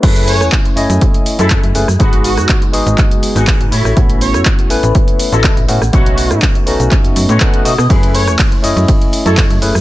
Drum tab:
CC |x---------------|----------------|----------------|----------------|
RD |----------------|----------------|----------------|----------------|
HH |xxoxxxoxxxoxxxo-|xxoxxxoxxxoxxxo-|xxoxxxoxxxoxxxo-|xxoxxxoxxxoxxxo-|
SH |x-xxx-xxx-xxx-xx|x-xxx-xxx-xxx-xx|x-xxx-xxx-xxx-xx|x-xxx-xxx-xxx-xx|
CP |----x-------x---|----x---x---x---|----x-------x---|----x---x---x---|
SD |---r-----------r|---r-----------r|---r-----------r|---r-----------r|
BD |o---o---o---o---|o---o---o---o---|o---o---o---o---|o---o---o---o---|

CC |----------------|
RD |x---x---x---x---|
HH |xxoxxxoxxxoxxxo-|
SH |x-xxx-xxx-xxx-xx|
CP |----x-------x---|
SD |---r-----------r|
BD |o---o---o---o---|